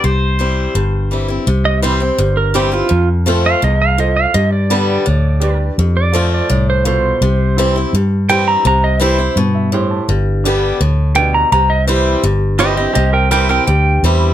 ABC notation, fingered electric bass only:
X:1
M:4/4
L:1/8
Q:1/4=167
K:C
V:1 name="Fingered electric bass" clef=bass
C,,4 G,,,4 | C,,4 G,,,4 | F,,4 C,,4 | G,,4 D,,4 |
F,,4 C,,4 | C,,4 G,,4 | C,,4 G,,4 | G,,,4 D,,4 |
C,,4 G,,,4 | C,,4 D,,2 E,,2 |]